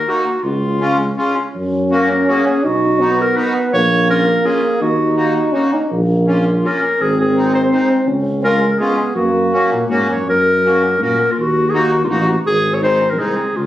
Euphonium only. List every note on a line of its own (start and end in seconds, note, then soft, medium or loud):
1.55 2.65 C#4 loud
2.64 3.02 D#4 loud
3.00 3.75 B3 loud
3.74 4.83 A#3 loud
4.81 5.54 D#4 loud
5.53 5.75 C#4 medium
5.74 5.90 D#4 medium
5.91 6.70 A#3 medium
7.01 8.09 C4 loud
8.07 8.45 C#4 medium
8.44 8.83 G#3 medium
8.81 9.15 B3 medium
9.16 9.86 A#3 medium
9.89 10.24 A#3 medium